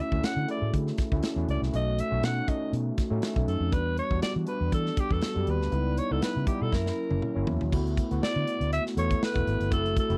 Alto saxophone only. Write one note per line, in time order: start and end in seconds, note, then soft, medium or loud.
0.00 0.26 E5 medium
0.25 0.49 F#5 medium
0.51 0.73 D5 medium
1.50 1.61 D5 medium
1.75 2.02 D#5 medium
2.00 2.26 E5 medium
2.25 2.50 F#5 medium
2.49 2.73 D#5 medium
3.48 3.74 A4 medium
3.73 3.98 B4 medium
3.99 4.22 C#5 medium
4.22 4.34 D5 medium
4.48 4.71 B4 medium
4.74 5.01 A4 medium
5.00 5.14 G4 medium
5.12 5.51 A4 medium
5.50 6.00 B4 medium
5.98 6.13 C#5 medium
6.12 6.23 A4 medium
6.23 6.46 B4 medium
6.48 6.64 G4 medium
6.62 6.76 A4 medium
6.74 7.48 A#4 medium
8.23 8.69 D5 medium
8.73 8.84 E5 loud
8.98 9.21 C#5 loud
9.24 9.69 B4 medium
9.73 9.96 A4 loud
9.99 10.18 A4 medium